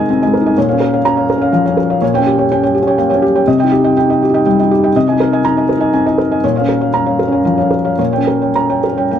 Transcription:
Already playing: C3 G#3 D#4 A#4 D#5 G#5 A#5
0.10 C4 G#5
0.22 G#3 D#5 G#5
0.34 A#4
0.41 D#4
0.46 D#5 G#5
0.58 A#2 C#5
0.69 C#4 C#5 F5
0.80 A#4
0.93 C#5 F5
1.05 C#4 A#5
1.17 C#5 F5
1.30 A#4
1.38 C#4 C#5 F5
1.52 F3 F5
1.66 C#4 C#5 F5
1.77 A#4
1.90 C#5 F5
2.02 A#2 C#5
2.14 C#5 G5
2.18 C#4
2.26 G4
2.39 C#5 G5
2.52 C#4 G5
2.63 C#5 G5
2.75 G4
2.82 C#4
2.87 C#5 G5
2.98 A#3 G5
3.10 C#5 G5
3.15 C#4
3.22 G4
3.35 C#5 G5
3.48 C3 D#5
3.59 D#5 G5
3.64 D#4
3.72 G4
3.84 D#5 G5
3.97 D#4 G5
4.10 D#5 G5
4.23 G4
4.30 D#4
4.34 D#5 G5
4.46 G3 G5
4.59 D#4 D#5 G5
4.71 G4
4.84 D#5 G5
4.96 C3 D#5
5.08 D#5 G#5
5.12 D#4
5.20 A#4
5.33 D#5 G#5
5.45 D#4 A#5
5.57 D#5 G#5
5.69 A#4
5.77 D#4 D#5 G#5
5.94 C4 G#5
6.06 D#5 G#5
6.10 D#4
6.18 A#4
6.31 D#5 G#5
6.44 A#2 C#5
6.56 C#5 F5
6.61 C#4
6.69 A#4
6.81 C#5 F5
6.93 C#4 A#5
7.06 C#5 F5
7.19 A#4
7.28 C#4
7.32 C#5 F5
7.45 F3 F5
7.57 C#5 F5
7.62 C#4
7.71 A#4
7.84 C#5 F5
7.99 A#2 C#5
8.12 C#5 G5
8.17 C#4
8.27 A#4
8.42 C#5 G5
8.55 C#4 A#5
8.69 C#5 G5
8.84 A#4
8.93 C#4
8.97 C#5 G5
9.11 A#3 G5

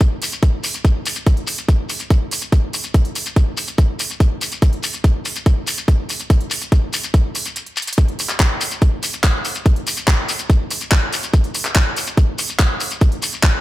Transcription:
0.01 kick, closed hi-hat, shekere
0.22 open hi-hat, shekere
0.32 closed hi-hat, shekere
0.43 kick, closed hi-hat, shekere
0.64 open hi-hat, shekere
0.74 closed hi-hat, shekere
0.85 kick, closed hi-hat, shekere
1.06 open hi-hat, shekere
1.16 closed hi-hat, shekere
1.27 kick, closed hi-hat, shekere
1.37 closed hi-hat
1.47 open hi-hat, shekere
1.58 closed hi-hat, shekere
1.69 kick, closed hi-hat, shekere
1.89 open hi-hat, shekere
2.00 closed hi-hat, shekere
2.10 kick, closed hi-hat, shekere
2.31 open hi-hat, shekere
2.41 closed hi-hat, shekere
2.52 kick, closed hi-hat, shekere
2.73 open hi-hat, shekere
2.84 closed hi-hat, shekere
2.94 kick, closed hi-hat, shekere
3.05 closed hi-hat
3.15 open hi-hat, shekere
3.26 closed hi-hat, shekere
3.36 kick, closed hi-hat, shekere
3.57 open hi-hat, shekere
3.68 closed hi-hat, shekere
3.78 kick, closed hi-hat, shekere
3.99 open hi-hat, shekere
4.10 closed hi-hat, shekere
4.20 kick, closed hi-hat, shekere
4.41 open hi-hat, shekere
4.52 closed hi-hat, shekere
4.62 kick, closed hi-hat, shekere
4.73 closed hi-hat
4.83 open hi-hat, shekere
4.94 closed hi-hat, shekere
5.04 kick, closed hi-hat, shekere
5.25 open hi-hat, shekere
5.36 closed hi-hat, shekere
5.46 kick, closed hi-hat, shekere
5.67 open hi-hat, shekere
5.78 closed hi-hat, shekere
5.88 kick, closed hi-hat, shekere
6.09 open hi-hat, shekere
6.20 closed hi-hat, shekere
6.30 kick, closed hi-hat, shekere
6.41 closed hi-hat
6.50 open hi-hat, shekere
6.61 closed hi-hat, shekere
6.72 kick, closed hi-hat, shekere
6.93 open hi-hat, shekere
7.03 closed hi-hat, shekere
7.14 kick, closed hi-hat, shekere
7.35 open hi-hat, shekere
7.45 closed hi-hat, shekere
7.56 closed hi-hat, shekere
7.66 closed hi-hat
7.76 closed hi-hat, shekere
7.82 closed hi-hat
7.87 closed hi-hat, shekere
7.93 closed hi-hat
7.98 kick, closed hi-hat, shekere
8.08 closed hi-hat
8.19 open hi-hat, shekere
8.29 clap, closed hi-hat, shekere
8.40 kick, clap, closed hi-hat, shekere
8.61 open hi-hat, shekere
8.71 closed hi-hat, shekere
8.82 kick, closed hi-hat, shekere
9.03 open hi-hat, shekere
9.13 closed hi-hat, shekere
9.24 kick, clap, closed hi-hat, shekere
9.45 open hi-hat, shekere
9.55 closed hi-hat, shekere
9.65 kick, closed hi-hat, shekere
9.76 closed hi-hat
9.87 open hi-hat, shekere
9.97 closed hi-hat, shekere
10.08 kick, clap, closed hi-hat, shekere
10.29 open hi-hat, shekere
10.39 closed hi-hat, shekere
10.50 kick, closed hi-hat, shekere
10.71 open hi-hat, shekere
10.81 closed hi-hat, shekere
10.92 kick, clap, closed hi-hat, shekere
11.13 open hi-hat, shekere
11.23 closed hi-hat, shekere
11.34 kick, closed hi-hat, shekere
11.44 closed hi-hat
11.55 open hi-hat, shekere
11.65 clap, closed hi-hat, shekere
11.75 kick, clap, closed hi-hat, shekere
11.96 open hi-hat, shekere
12.07 closed hi-hat, shekere
12.17 kick, closed hi-hat, shekere
12.38 open hi-hat, shekere
12.49 closed hi-hat, shekere
12.59 kick, clap, closed hi-hat, shekere
12.80 open hi-hat, shekere
12.91 closed hi-hat, shekere
13.01 kick, closed hi-hat, shekere
13.12 closed hi-hat
13.22 open hi-hat, shekere
13.33 closed hi-hat, shekere
13.42 kick, clap, closed hi-hat, shekere

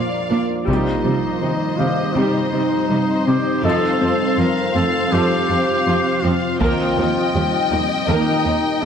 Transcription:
Already playing: F3 A#3 F4 D5 F5
0.31 A#2 A#3 D4 A#4
0.67 C3 G3 C4 D#4 G4 C5 D#5, taiko
1.05 C3 G3 C4
1.41 C3 D#3 G3 D#4
1.79 C3 D#3 G3 C4 G4 F5
2.16 C3 G3 D#4 G4
2.53 C3 G3 C4
2.90 C3 G3 D#4
3.27 C3 G3 C4 G4
3.64 F2 F3 F4 A4 D#5 F5
4.01 F2 F3 C4
4.38 F2 F3 C4 F4 A#4
4.75 F2 F3 A3 C4 A4
5.12 F2 F3 G4 A4
5.49 F2 F3 C4 F4
5.86 F2 F3 C4 F4
6.23 F2 F3 C4 F4
6.60 D#2 D#3 A#3 D#4 F4 G4 A#4 D#5 G5, taiko
6.97 D#2 A#3 D#4
7.35 D#2 G3 A#3 G4
7.71 D#2 G3 A#3 D#4
8.08 D#2 D#3 A#3 D#4 A#4
8.45 D#2 A#3 D#4

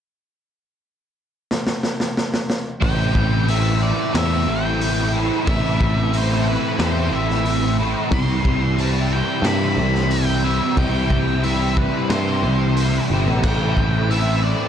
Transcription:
1.51 snare
1.67 snare
1.83 snare
2.00 snare
2.17 snare
2.34 snare
2.50 snare
2.81 A1 A2 E3 A3 C4 E4 G5, kick, open hi-hat
3.15 kick
3.47 E3 A3 C4 E4 E5, open hi-hat
3.83 D5
4.12 E2 A2 E3 A3 C4 E4, snare, open hi-hat
4.17 E5
4.48 A1 G5
4.81 open hi-hat
5.12 A3 C4 E4
5.45 A1 A2 E3 A3 C4 E4 E5, kick, open hi-hat
5.81 kick
6.11 E3 A3 C4 E4, open hi-hat
6.17 C5
6.49 B4
6.78 E2 A2 E3 A3 C4 E4 C5, snare, open hi-hat
7.11 A1 E5
7.30 snare
7.45 open hi-hat
7.79 A3 C4 E4
8.11 C2 C3 E3 G3 C4 E4 C6, kick, open hi-hat
8.45 kick
8.77 E3 G3 C4 E4 A5, open hi-hat
9.13 G5
9.42 G2 C3 E3 G3 C4 E4 B5, snare, open hi-hat
9.76 C2
9.95 snare
10.11 G5, open hi-hat
10.43 G3 C4 E4 E5
10.76 C2 C3 E3 G3 C4 E4 G5, kick, open hi-hat
11.10 kick
11.43 E3 G3 C4 E4 E5, open hi-hat
11.77 B4, kick
12.10 G2 C3 E3 G3 C4 E4 C5, snare, open hi-hat
12.43 C2
12.77 open hi-hat
13.10 G1 G3 C4 E4
13.26 A1
13.43 A1 A2 E3 A3 C4 E4 G5, kick, crash
13.77 kick
14.09 E3 A3 C4 E4 E5, open hi-hat
14.44 D5

